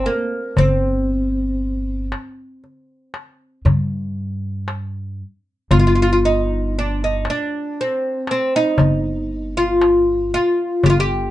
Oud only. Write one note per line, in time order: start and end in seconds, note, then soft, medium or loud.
0.06 0.58 A#3 medium
0.58 2.08 C4 medium
5.71 5.78 F4 medium
5.79 5.86 F4 medium
5.87 5.94 F4 medium
5.95 6.01 F4 medium
6.02 6.09 F4 medium
6.13 6.18 F4 medium
6.25 6.77 D#4 medium
6.79 7.02 D4 medium
7.04 7.28 D#4 medium
7.30 7.80 D4 medium
7.81 8.26 C4 medium
8.31 8.56 C4 medium
8.56 9.57 D#4 medium
9.57 10.33 F4 medium
10.34 10.86 F4 medium
10.86 10.98 F4 medium
10.86 10.89 G4 medium
11.00 11.31 G4 medium